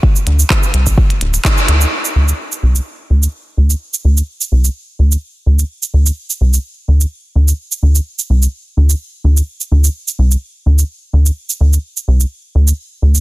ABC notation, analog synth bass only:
X:1
M:4/4
L:1/8
Q:"Swing 16ths" 1/4=127
K:Cmix
V:1 name="Analog synth bass" clef=bass
z D,, z C,, z D,,, z D,, | z D,, z C,, z D,, z D,, | z D,, z C,, z D,, z D,, | z D,, z C,, z D,, z D,, |
z D,, z C,, z D,, z D,, | z D,, z C,, z D,, z D,, | z D,, z C,, z D,, z D,, |]